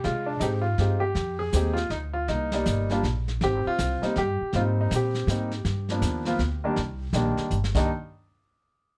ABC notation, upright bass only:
X:1
M:3/4
L:1/8
Q:"Swing" 1/4=160
K:Cm
V:1 name="Upright bass" clef=bass
C,2 A,,2 G,,2 | F,,2 E,,2 D,,2 | C,,2 G,,,2 B,,,2 | A,,, z C,, z G,, z |
A,,2 B,,2 A,,2 | G,,2 E,,2 D,,2 | C,,2 B,,, z G,,, C,, | z6 |]